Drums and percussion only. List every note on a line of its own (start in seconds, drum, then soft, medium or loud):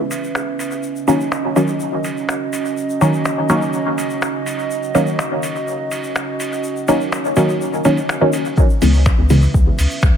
0.11 open hi-hat medium
0.11 shaker loud
0.24 shaker soft
0.35 finger snap medium
0.35 shaker medium
0.59 open hi-hat medium
0.59 shaker medium
0.71 shaker soft
0.83 shaker soft
0.96 shaker soft
1.08 open hi-hat medium
1.08 shaker medium
1.20 shaker soft
1.32 finger snap medium
1.32 shaker medium
1.56 open hi-hat medium
1.56 shaker medium
1.68 shaker soft
1.80 shaker medium
2.04 open hi-hat medium
2.04 shaker medium
2.17 shaker soft
2.29 finger snap medium
2.29 shaker medium
2.53 open hi-hat medium
2.53 shaker medium
2.65 shaker soft
2.77 shaker soft
2.90 shaker soft
3.01 open hi-hat medium
3.01 shaker medium
3.13 shaker soft
3.25 finger snap medium
3.25 shaker soft
3.49 open hi-hat medium
3.49 shaker medium
3.62 shaker soft
3.73 shaker soft
3.98 open hi-hat medium
3.98 shaker medium
4.10 shaker soft
4.22 finger snap medium
4.22 shaker soft
4.46 open hi-hat medium
4.46 shaker medium
4.59 shaker soft
4.71 shaker soft
4.83 shaker soft
4.95 open hi-hat medium
4.95 shaker medium
5.07 shaker soft
5.19 finger snap medium
5.19 shaker soft
5.43 open hi-hat medium
5.43 shaker medium
5.56 shaker soft
5.68 shaker soft
5.91 open hi-hat medium
5.91 shaker medium
6.03 shaker soft
6.16 finger snap medium
6.16 shaker soft
6.40 open hi-hat medium
6.40 shaker medium
6.53 shaker soft
6.64 shaker medium
6.76 shaker soft
6.88 open hi-hat medium
6.88 shaker medium
7.01 shaker soft
7.12 finger snap medium
7.12 shaker soft
7.25 shaker soft
7.36 open hi-hat medium
7.36 shaker medium
7.49 shaker soft
7.61 shaker soft
7.73 shaker soft
7.84 open hi-hat medium
7.84 shaker medium
7.97 open hi-hat soft
7.97 shaker soft
8.09 finger snap medium
8.09 shaker soft
8.33 open hi-hat medium
8.33 shaker medium
8.45 shaker soft
8.58 kick loud
8.58 shaker medium
8.70 shaker soft
8.82 open hi-hat medium
8.82 shaker medium
8.94 shaker soft
9.06 finger snap medium
9.06 kick loud
9.06 shaker soft
9.30 open hi-hat medium
9.30 shaker medium
9.42 shaker soft
9.54 kick loud
9.54 shaker soft
9.79 open hi-hat medium
9.79 shaker medium
9.91 shaker soft
10.02 finger snap medium
10.02 kick loud
10.02 shaker medium